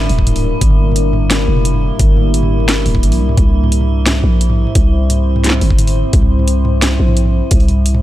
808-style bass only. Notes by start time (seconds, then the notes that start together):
0.10 D1
0.61 G1
1.48 F1
2.00 G1
2.86 D1
3.03 A#1
3.20 C2
3.37 C2
4.24 A#1
4.75 C2
5.62 G1
6.13 C2
7.00 A#1
7.51 C2